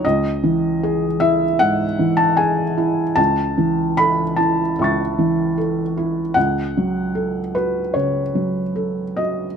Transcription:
<<
  \new Staff \with { instrumentName = "Felt piano" } { \time 4/4 \key cis \minor \tempo 4 = 76 << { r1 | r2 <e'' cis''' a'''>2 | r1 | } \\ { dis''4. e''8 fis''8. a''16 gis''4 | a''4 b''8 a''4. r4 | fis''4. b'8 cis''4. dis''8 | } >> }
  \new Staff \with { instrumentName = "Felt piano" } { \time 4/4 \key cis \minor cis,8 e8 gis'8 e'8 gis,8 e8 gis'8 e'8 | cis,8 e8 a'8 e'8 cis,8 e8 a'8 e'8 | cis,8 fis8 a'8 fis'8 cis8 fis8 a'8 fis'8 | }
>>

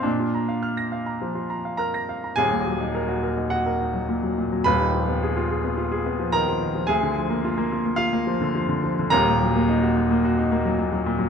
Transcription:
<<
  \new Staff \with { instrumentName = "Grand piano" } { \time 4/4 \key ees \minor \tempo 4 = 107 d'2. <bes' bes''>4 | <aes' aes''>2 <ges' ges''>2 | <ces'' ces'''>2. <bes' bes''>4 | <aes' aes''>2 <f' f''>2 |
<bes' bes''>2. r4 | }
  \new Staff \with { instrumentName = "Grand piano" } { \time 4/4 \key ees \minor bes,16 f'16 bes''16 f''16 f'''16 bes'''16 f''16 bes''16 f16 f'16 bes''16 f''16 f'''16 bes'''16 f''16 bes''16 | <ees,, ees,>16 bes,16 ges16 ees'16 bes'16 ges'16 bes'16 ees'8 bes'16 ees'16 ges16 bes,16 ges16 bes,16 ges16 | <ees,, ees,>16 ees16 f16 ces'16 aes'16 f'16 aes'16 ces'16 f'16 aes'16 ces'16 f16 ees16 f16 ees16 f16 | d,16 d16 f16 bes16 f'16 bes16 f'16 bes8 bes16 f16 d16 f16 d16 f16 d16 |
<ees,, ees,>16 bes,16 ges16 bes16 ees'16 ges'16 ees'16 bes16 ges'16 ees'16 bes16 ges16 bes,16 ges16 bes,16 ges16 | }
>>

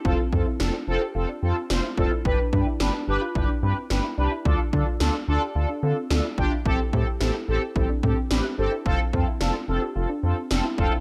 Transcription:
<<
  \new Staff \with { instrumentName = "Analog polysynth" } { \time 4/4 \key f \lydian \tempo 4 = 109 <c' f' a'>16 r16 <c' f' a'>16 r16 <c' f' a'>16 r16 <c' f' a'>16 r16 <c' f' a'>16 r16 <c' f' a'>16 r16 <c' f' c''>16 r16 <c' f' a'>16 r16 | <d' g' b'>16 r16 <d' g' b'>16 r16 <d' g' b'>16 r16 <d' g' b'>16 r16 <d' g' b'>16 r16 <d' g' b'>16 r16 <d' g' b'>16 r16 <d' g' b'>16 r16 | <d' f' a'>16 r16 <d' f' a'>16 r16 <d' f' a'>16 r16 <d' f' a'>16 r16 <d' f' a'>16 r16 <d' f' a'>16 r16 <d' f' a'>16 r16 <d' f' g'>16 r16 | <c' g' a'>16 r16 <c' g' a'>16 r16 <c' g' a'>16 r16 <c' g' a'>16 r16 <c' g' a'>16 r16 <c' g' a'>16 r16 <c' g' b'>16 r16 <c' g' a'>16 r16 |
<c' f' a'>16 r16 <c' f' a'>16 r16 <c' f' a'>16 r16 <c' f' a'>16 r16 <c' f' a'>16 r16 <c' f' a'>16 r16 <c' f' a'>16 r16 <c' f' a'>16 r16 | }
  \new Staff \with { instrumentName = "Synth pluck" } { \time 4/4 \key f \lydian c'8 c'16 e'16 d'16 d'8 g'16 f'16 d'16 c'8 d'16 e'16 d'16 e'16 | d'8 d'16 e'16 d'16 d'8 f'16 e'16 d'16 c'8 d'16 e'16 d'16 e'16 | d'8 d'16 f'16 d'16 d'8 g'16 f'16 d'16 c'8 d'16 e'16 d'16 e'16 | e'8 e'16 g'16 e'16 e'8 g'16 e'16 d'16 c'8 d'16 e'16 d'16 e'16 |
c'8 c'16 e'16 d'16 d'8 g'16 f'16 d'16 c'8 d'16 e'16 d'16 e'16 | }
  \new Staff \with { instrumentName = "Analog synth bass" } { \clef bass \time 4/4 \key f \lydian f,,16 r16 f,16 r16 f,,16 r16 f,,16 r16 f,,16 r16 f,16 r16 f,,16 r16 f,,16 r16 | g,,16 r16 g,16 r16 g,,16 r16 g,,16 r16 g,,16 r16 g,16 r16 g,,16 r16 c,16 r16 | d,16 r16 d16 r16 d,16 r16 d,16 r16 d,16 r16 d16 r16 d,16 r16 g,,16 r16 | a,,16 r16 a,16 r16 a,,16 r16 a,,16 r16 a,,16 r16 a,16 r16 a,,16 r16 g,,16 r16 |
f,,16 r16 f,16 r16 f,,16 r16 f,,16 r16 f,,16 r16 f,16 r16 f,,16 r16 f,,16 r16 | }
  \new DrumStaff \with { instrumentName = "Drums" } \drummode { \time 4/4 bd8 bd8 sn4 r4 sn8 bd8 | bd8 bd8 sn4 bd4 sn4 | bd8 bd8 sn4 r4 sn8 bd8 | bd8 bd8 sn4 bd8 bd8 sn4 |
bd8 bd8 sn4 r4 sn8 bd8 | }
>>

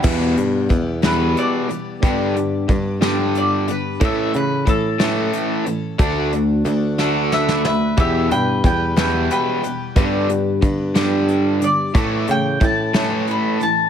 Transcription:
<<
  \new Staff \with { instrumentName = "Mandolin" } { \time 6/8 \key e \dorian \tempo 4. = 60 r4. b'8 d''4~ | d''2 d''8 b'8 | e''8 b'8 a'4 r4 | r2 <b' e''>8 <b' e''>8 |
<g' e''>8 <b' g''>8 <b' g''>8 <b' g''>8 <b' g''>4~ | <b' g''>2 r8 d''8~ | d''8 g''8 a''4 b''8 a''8 | }
  \new Staff \with { instrumentName = "Reed electric piano" } { \time 6/8 \key e \dorian <b e' g'>4 r8 <b e' g'>4 r8 | <b d' g'>4 r8 <b d' g'>4 r8 | <cis' e' a'>4 r8 <cis' e' a'>4 r8 | <d' fis' a'>4 r8 <d' fis' a'>4 r8 |
<e' g' b'>4 r8 <e' g' b'>4 r8 | <d' g' b'>4 r8 <d' g' b'>4 r8 | <e' a' cis'''>4 r8 <e' a' cis''>4 r8 | }
  \new Staff \with { instrumentName = "Twelve-string acoustic guitar" } { \time 6/8 \key e \dorian <e, b, e g b g'>4 <e g b g'>8 <e, b, e g b g'>4 <e g b g'>8 | <g, d g b d' g'>4 <g b d' g'>8 <g, d g b d' g'>4 <g b d' g'>8 | <a, e a cis' a'>4 <e a cis' a'>8 <a, e a cis' a'>4 <a cis' a'>8 | <d a d' fis'>4 <d a d' fis'>8 <d a d' fis'>4 <a d' fis'>8 |
<e, b, e g b g'>4 <e g b g'>8 <e, b, e g b g'>4 <e g b g'>8 | <g, d g b d' g'>4 <g b d' g'>8 <g, d g b d' g'>4 <g b d' g'>8 | <a, e a e'>4 <e a cis' e'>8 <a, e a cis' e'>4 <a cis' e'>8 | }
  \new Staff \with { instrumentName = "Overdriven electric guitar" } { \clef bass \time 6/8 \key e \dorian <e, b, e>8 <e, b,>8 <e, b,>8 <e, b, e>4 <e, b,>8 | <g, d g>8 <g, d>8 <g, d>8 <g, d g>4 <g, d>8 | <a, e a>8 <a, e>8 <a, e>8 <a, e a>4 <a, e>8 | <d a d'>8 <d a>8 <d a>8 <d a d'>4 <d a>8 |
<e, b, e>8 <e, b,>8 <e, b,>8 <e, b, e>4 <e, b,>8 | <g, d g>8 <g, d>8 <g, d>8 <g, d g>4 <g, d>8 | <a, e a>8 <a, e>8 <a, e>8 <a, e a>4 <a, e>8 | }
  \new Staff \with { instrumentName = "Picked electric bass" } { \clef bass \time 6/8 \key e \dorian e,8 g,8 e,8 e,8 r4 | g,4 g,2 | a,8 cis8 a,8 a,8 r4 | d,4 d,2 |
e,8 g,8 e,8 e,8 r4 | g,4 g,2 | a,8 cis8 a,8 a,8 r4 | }
  \new DrumStaff \with { instrumentName = "Drums" } \drummode { \time 6/8 <cymc bd>8 hh8 <hh bd>8 <hh sn>8 hh8 hh8 | <hh bd>8 hh8 <hh bd>8 <hh sn>8 hh8 hh8 | <hh bd>8 hh8 <hh bd>8 <hh sn>8 hh8 hh8 | <hh bd>8 hh8 hh8 sn8 sn16 sn16 sn8 |
<hh bd>8 hh8 <hh bd>8 <hh sn>8 hh8 hh8 | <hh bd>8 hh8 <hh bd>8 <hh sn>8 hh8 hh8 | <hh bd>8 hh8 <hh bd>8 <hh sn>8 hh8 hh8 | }
>>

